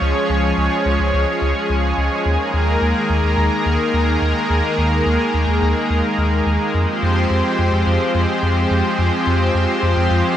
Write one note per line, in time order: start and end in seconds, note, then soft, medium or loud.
0.00 0.13 C#2 loud
0.00 2.22 F3 medium
0.00 10.37 G#3 medium
0.00 2.22 C#4 medium
0.00 6.70 G#4 medium
0.00 2.22 C#5 medium
0.30 0.52 C#2 medium
0.58 0.69 C#2 medium
0.86 0.97 C#2 medium
1.00 1.11 C#2 medium
1.14 1.25 C#2 loud
1.42 1.53 C#2 medium
1.70 1.93 C#2 medium
1.98 2.09 C#2 medium
2.26 2.37 D#2 loud
2.26 6.70 D#3 medium
2.26 6.70 A#3 medium
2.26 6.70 A#4 medium
2.54 2.77 D#2 medium
2.82 2.93 D#2 medium
3.10 3.21 D#2 medium
3.24 3.35 D#2 medium
3.38 3.49 D#2 loud
3.66 3.77 D#2 medium
3.94 4.17 D#2 medium
4.22 4.33 D#2 medium
4.50 4.61 D#2 loud
4.78 5.01 D#2 medium
5.06 5.18 D#2 medium
5.34 5.46 D#2 medium
5.48 5.60 D#2 medium
5.62 5.74 D#2 loud
5.90 6.02 D#2 medium
6.18 6.41 D#2 medium
6.46 6.58 D#2 medium
6.74 6.86 F2 medium
6.74 10.37 F3 medium
6.74 10.37 C4 medium
6.74 10.37 G4 medium
6.74 10.37 C5 medium
7.03 7.25 F2 medium
7.31 7.42 F2 medium
7.59 7.70 F2 medium
7.73 7.84 F2 medium
7.87 7.98 F2 loud
8.15 8.26 F2 medium
8.43 8.66 F2 medium
8.71 8.82 F2 medium
8.99 9.10 F2 loud
9.27 9.50 F2 medium
9.55 9.66 F2 medium
9.83 9.94 F2 medium
9.97 10.08 F2 medium
10.11 10.22 F2 loud